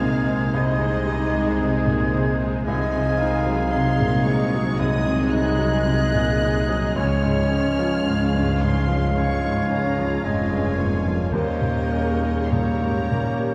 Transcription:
0.00 0.50 C2 medium
0.00 2.65 C2 medium
0.00 1.86 A#2 soft
0.00 0.02 C3 soft
0.00 2.65 C3 medium
0.00 0.44 C3 soft
0.00 0.27 G#3 soft
0.00 0.50 G#3 medium
0.00 2.49 G#3 medium
0.00 0.50 D#4 medium
0.00 1.06 D#4 medium
0.00 2.49 D#4 medium
0.00 0.50 G#4 medium
0.00 0.56 A#4 medium
0.00 0.50 C5 medium
0.00 2.49 D#5 soft
0.00 0.54 F5 medium
0.00 2.40 G#6 medium
0.27 0.69 G#3 soft
0.54 2.62 C2 medium
0.54 2.63 G#3 medium
0.54 2.62 D#4 medium
0.54 2.63 G#4 medium
0.54 2.62 C5 medium
0.54 1.08 C5 medium
0.54 2.14 D#5 medium
0.80 1.23 C3 soft
1.06 1.49 D#4 medium
1.06 1.61 G4 medium
1.33 1.76 G#3 soft
1.59 2.03 C3 soft
1.59 2.14 G#4 soft
1.86 2.13 A#2 soft
2.13 2.56 C3 soft
2.13 2.65 C5 medium
2.42 2.68 G#3 soft
2.65 6.93 C2 medium
2.65 4.75 C2 medium
2.65 6.92 C3 medium
2.65 3.15 F3 medium
2.65 3.68 G#3 medium
2.65 6.92 G#3 medium
2.65 6.92 D#4 medium
2.65 3.68 F4 medium
2.65 4.75 G#4 medium
2.65 3.68 C5 medium
2.65 3.19 D#5 medium
2.65 3.68 D#5 medium
2.65 3.68 G#5 medium
2.65 3.68 G#6 medium
2.96 3.36 C3 soft
3.17 3.72 D#3 medium
3.17 3.62 D#4 medium
3.17 4.51 F5 medium
3.47 3.88 F#3 soft
3.70 4.16 C3 soft
3.70 4.76 G#3 medium
3.70 6.97 G#3 medium
3.70 4.79 D#4 medium
3.70 4.77 D#5 medium
3.70 4.79 F5 medium
3.70 4.24 C6 medium
3.70 4.76 G#6 medium
4.00 4.26 A#2 soft
4.24 4.69 C3 soft
4.24 4.78 C#6 medium
4.54 4.96 F#3 soft
4.78 6.93 C2 medium
4.78 6.92 G#3 medium
4.78 5.87 F#4 medium
4.78 8.06 G#4 medium
4.78 6.97 D#5 medium
4.78 5.85 D#5 medium
4.78 6.93 D#5 medium
4.78 5.32 D#6 medium
4.78 6.92 G#6 medium
5.05 5.49 C3 medium
5.31 5.76 D#4 medium
5.31 6.96 F#6 medium
5.58 6.03 F#3 soft
5.86 6.30 C3 soft
5.86 6.40 F4 medium
5.86 6.94 D#5 medium
6.14 6.42 A#2 soft
6.42 6.86 C3 soft
6.42 6.96 D#4 medium
6.69 6.96 F#3 soft
6.96 9.12 C#2 medium
6.96 10.24 C#2 medium
6.96 10.25 C#3 medium
6.96 8.05 F3 medium
6.96 8.84 G#3 medium
6.96 11.15 G#3 medium
6.96 8.05 C#4 medium
6.96 11.15 C#4 medium
6.96 8.06 C#5 medium
6.96 8.85 C#5 medium
6.96 8.07 C#5 medium
6.96 8.62 F6 medium
6.96 8.85 G#6 medium
7.23 7.68 G#2 soft
7.50 7.95 C#4 soft
7.79 8.23 F3 soft
8.05 8.51 G#2 soft
8.05 10.23 G#3 soft
8.05 9.14 C#4 soft
8.05 9.16 F4 medium
8.05 9.16 F5 medium
8.05 10.26 F5 medium
8.34 8.61 G2 soft
8.60 9.04 G#2 soft
8.60 9.16 C6 medium
8.88 9.32 F3 soft
9.15 11.29 C#2 soft
9.15 10.21 G#3 medium
9.15 11.32 F4 medium
9.15 11.29 F4 soft
9.15 10.20 C#5 medium
9.15 11.29 F5 medium
9.15 9.71 C#6 medium
9.15 10.21 G#6 medium
9.44 9.87 G#2 soft
9.71 10.14 C#4 soft
9.71 10.24 A#5 medium
9.98 10.41 F3 soft
10.24 11.31 F1 medium
10.24 11.30 F2 medium
10.24 10.68 G#2 soft
10.24 10.77 G#3 medium
10.24 11.34 G#3 medium
10.24 11.30 C#5 medium
10.24 10.80 D#5 medium
10.24 11.34 G#5 medium
10.24 11.33 G#6 medium
10.52 10.79 G2 soft
10.77 11.22 G#2 soft
10.77 12.50 A#3 medium
10.77 11.13 C#5 medium
11.07 11.33 F3 soft
11.32 13.54 D#2 medium
11.32 13.05 D#3 medium
11.32 13.54 G3 soft
11.32 12.49 A#3 medium
11.32 13.54 C#4 soft
11.32 11.91 G4 soft
11.32 12.49 A#4 medium
11.32 11.92 C5 medium
11.32 13.54 C#5 medium
11.32 12.49 C#5 soft
11.32 12.42 D#5 medium
11.32 12.50 G6 medium
11.61 12.09 A#2 soft
11.90 12.40 C#4 soft
11.90 12.50 G#4 soft
11.90 12.52 A#4 medium
12.24 12.70 A#3 soft
12.44 12.51 C6 soft
12.50 12.98 A#2 soft
12.50 13.07 G3 medium
12.50 13.54 A#3 soft
12.50 13.54 G4 soft
12.50 13.10 G#4 medium
12.50 13.54 A#4 soft
12.50 13.54 C#5 soft
12.50 13.54 A#5 medium
12.50 13.54 G6 medium
12.82 13.10 G#2 soft
13.09 13.54 A#2 soft
13.09 13.54 G3 soft
13.09 13.54 G4 soft
13.40 13.54 A#3 soft

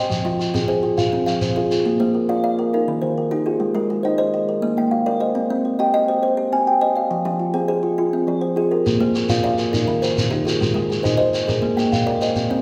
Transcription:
0.00 0.25 C5 medium
0.00 0.40 D#5 medium
0.00 0.11 G5 medium
0.10 0.39 F3 medium
0.10 shekere medium
0.25 0.54 F3 medium
0.25 0.38 F4 medium
0.39 0.82 F4 medium
0.39 shekere soft
0.54 0.83 C4 medium
0.54 0.67 G#4 medium
0.54 shekere medium
0.68 0.98 G#4 medium
0.68 1.12 C5 medium
0.83 1.12 F4 medium
0.98 1.42 F4 medium
0.98 1.42 F5 medium
0.98 shekere medium
1.13 1.42 C4 medium
1.26 1.56 F3 medium
1.26 1.71 F5 medium
1.26 shekere soft
1.41 1.86 C5 medium
1.41 shekere medium
1.56 1.70 F4 medium
1.56 1.71 G#4 medium
1.71 2.00 F4 medium
1.71 2.15 G#4 medium
1.71 shekere medium
1.86 2.15 A#3 medium
2.00 2.29 A#3 medium
2.00 2.44 C5 medium
2.15 2.57 A#4 medium
2.29 2.59 F4 medium
2.29 2.43 D5 medium
2.29 2.73 F5 medium
2.44 2.73 D5 medium
2.44 2.88 F5 medium
2.59 2.73 A#4 medium
2.73 3.17 D#4 medium
2.73 3.03 A#4 medium
2.88 3.17 D#3 medium
3.02 3.32 D#3 medium
3.02 3.46 C5 medium
3.18 3.61 A#4 medium
3.31 3.61 D#4 medium
3.31 3.61 G4 medium
3.46 3.76 F4 medium
3.46 3.90 G#4 medium
3.60 3.90 G#3 medium
3.75 4.04 G#3 medium
3.75 4.19 A#4 medium
3.90 4.33 G#4 medium
4.03 4.34 D#4 medium
4.03 4.17 C5 medium
4.03 4.49 D#5 medium
4.18 4.48 C5 medium
4.18 4.63 C5 medium
4.18 4.62 D#5 medium
4.34 4.48 G#4 medium
4.49 4.92 A#4 medium
4.62 4.92 A#3 medium
4.77 5.07 A#3 medium
4.77 5.21 G5 medium
4.91 5.36 F5 medium
5.06 5.36 A#4 medium
5.06 5.36 D5 medium
5.20 5.50 C5 medium
5.20 5.65 D#5 medium
5.35 5.65 C4 medium
5.50 5.80 C4 medium
5.65 6.07 C5 medium
5.79 6.09 G4 medium
5.79 5.93 D#5 medium
5.79 6.23 G5 medium
5.94 6.23 D#5 medium
5.94 6.38 D#5 medium
5.94 6.38 G5 medium
6.08 6.21 C5 medium
6.23 6.67 C5 medium
6.37 6.67 G4 medium
6.52 6.82 C4 medium
6.52 6.96 G#5 medium
6.67 7.11 G5 medium
6.81 7.11 C5 medium
6.81 7.11 D#5 medium
6.96 7.25 D5 medium
6.96 7.40 F5 medium
7.11 7.40 F3 medium
7.25 7.54 F3 medium
7.25 7.69 G4 medium
7.40 7.82 F4 medium
7.54 7.83 C4 medium
7.54 7.67 G#4 medium
7.54 7.98 C5 medium
7.68 7.98 G#4 medium
7.68 8.13 G#4 medium
7.68 8.12 C5 medium
7.83 7.97 F4 medium
7.98 8.42 F4 medium
8.13 8.42 C4 medium
8.27 8.56 F3 medium
8.27 8.71 D5 medium
8.41 8.85 C5 medium
8.56 8.85 F4 medium
8.56 8.86 G#4 medium
8.71 9.00 G4 medium
8.71 9.15 A#4 medium
8.86 9.15 A#3 medium
8.86 shekere medium
9.00 9.29 A#3 medium
9.00 9.44 C5 medium
9.15 9.58 A#4 medium
9.15 shekere medium
9.29 9.58 F4 medium
9.29 9.43 D5 medium
9.29 9.73 F5 medium
9.29 shekere medium
9.44 9.73 D5 medium
9.44 9.88 D5 medium
9.44 9.87 F5 medium
9.58 9.73 A#4 medium
9.58 shekere medium
9.73 10.17 D#4 medium
9.73 10.02 A#4 medium
9.73 shekere medium
9.88 10.17 D#3 medium
10.02 10.32 D#3 medium
10.02 10.46 C5 medium
10.02 shekere medium
10.17 10.60 A#4 medium
10.17 shekere medium
10.31 10.61 D#4 medium
10.31 10.60 G4 medium
10.45 10.75 F4 medium
10.45 10.89 G#4 medium
10.45 shekere medium
10.61 10.90 G#3 medium
10.61 shekere medium
10.74 11.04 G#3 medium
10.74 11.19 A#4 medium
10.90 11.33 G#4 medium
10.90 shekere medium
11.03 11.33 D#4 medium
11.03 11.16 C5 medium
11.03 11.48 D#5 medium
11.03 shekere medium
11.17 11.47 C5 medium
11.17 11.63 C5 medium
11.17 11.62 D#5 medium
11.34 11.48 G#4 medium
11.34 shekere medium
11.47 11.77 G#4 medium
11.47 11.92 A#4 medium
11.47 shekere medium
11.62 11.91 A#3 medium
11.77 12.06 A#3 medium
11.77 12.21 G5 medium
11.77 shekere medium
11.92 12.36 F5 medium
11.92 shekere medium
12.06 12.36 A#4 medium
12.06 12.36 D5 medium
12.21 12.50 C5 medium
12.21 12.62 D#5 medium
12.21 shekere medium
12.36 12.62 C4 medium
12.36 shekere medium
12.50 12.62 C4 medium
12.50 12.62 D5 medium

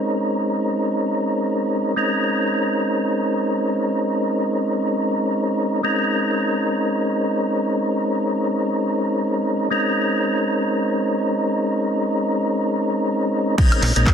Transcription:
0.00 1.94 G#3 medium
0.00 1.94 C4 medium
0.00 1.94 C#4 medium
0.00 1.95 D#4 medium
0.00 1.95 A#4 medium
1.96 5.81 G#3 medium
1.96 5.81 C4 medium
1.96 5.82 C#4 medium
1.96 5.82 D#4 medium
1.96 5.82 A#4 medium
5.83 9.68 G#3 medium
5.83 9.68 C4 medium
5.83 9.69 C#4 medium
5.83 9.69 D#4 medium
5.83 9.69 A#4 medium
9.70 13.55 G#3 medium
9.70 13.56 C4 medium
9.70 13.56 C#4 medium
9.70 13.56 D#4 medium
9.70 13.56 A#4 medium
13.58 13.93 G#3 medium
13.58 13.93 C4 medium
13.58 13.93 C#4 medium
13.58 13.93 D#4 medium
13.58 13.93 A#4 loud
13.58 kick loud
13.58 crash loud
13.72 closed hi-hat medium
13.72 high woodblock medium
13.82 13.91 A#1 loud
13.82 clap soft
13.82 open hi-hat loud
13.96 14.09 A#1 loud
13.96 14.14 G#3 medium
13.96 14.14 C4 medium
13.96 14.14 C#4 medium
13.96 14.14 D#4 medium
13.96 14.14 A#4 medium
13.96 closed hi-hat medium
14.07 kick loud
14.07 clap loud

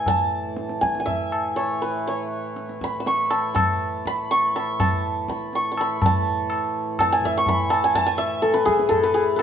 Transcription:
0.00 5.99 A2 medium
0.00 5.99 E3 medium
0.00 0.14 G#5 medium
0.06 0.87 A5 loud
0.06 tabla tin medium
0.06 tabla ge medium
0.57 tabla te medium
0.69 tabla te medium
0.81 0.99 G#5 medium
0.81 tabla ke medium
0.95 tabla te medium
1.00 3.01 G#5 medium
1.06 3.35 E5 medium
1.06 tabla tin medium
1.06 tabla ge medium
1.32 tabla na medium
1.56 2.07 C#5 medium
1.56 tabla na medium
1.82 4.55 B4 medium
2.07 4.64 C#5 medium
2.07 tabla tin medium
2.56 tabla te medium
2.69 tabla te medium
2.81 3.30 B5 medium
2.81 tabla ke medium
3.00 4.51 E6 medium
3.06 4.30 C#6 medium
3.06 tabla te medium
3.30 4.07 B5 medium
3.30 tabla na medium
3.54 4.80 A5 medium
3.54 tabla na medium
3.54 tabla ge medium
4.06 4.55 B5 medium
4.06 tabla ke medium
4.31 5.55 C#6 loud
4.31 tabla te medium
4.56 5.29 B5 medium
4.56 tabla na medium
4.80 6.05 A5 medium
4.80 tabla na medium
4.80 tabla ge medium
5.28 5.80 B5 medium
5.28 tabla ke medium
5.53 5.71 C#6 medium
5.53 tabla te medium
5.72 7.37 C#6 medium
5.77 7.48 B5 medium
5.77 tabla na medium
6.01 9.42 A2 medium
6.01 9.42 E3 medium
6.01 tabla tin loud
6.01 tabla ge medium
6.06 7.00 A5 medium
6.50 tabla na medium
6.99 7.18 A5 loud
6.99 tabla na medium
6.99 tabla ge medium
7.12 7.76 G#5 loud
7.22 8.17 E5 medium
7.22 tabla ge medium
7.37 9.06 C#6 medium
7.46 9.28 B5 loud
7.46 tabla tin medium
7.46 tabla ge medium
7.70 7.90 A5 loud
7.70 tabla na medium
7.84 8.01 G#5 loud
7.95 8.12 A5 loud
7.95 tabla tin medium
7.95 tabla ge medium
8.06 8.48 G#5 medium
8.18 9.42 E5 loud
8.42 8.71 A4 medium
8.42 tabla te medium
8.54 9.03 B4 medium
8.54 tabla te medium
8.65 8.95 G#4 loud
8.65 tabla ke medium
8.79 tabla te medium
8.89 9.20 A4 medium
8.89 tabla tin medium
8.89 tabla ge medium
9.03 9.36 B4 medium
9.14 9.42 G#4 medium
9.36 9.42 A4 medium
9.36 9.42 B4 medium
9.36 tabla na medium

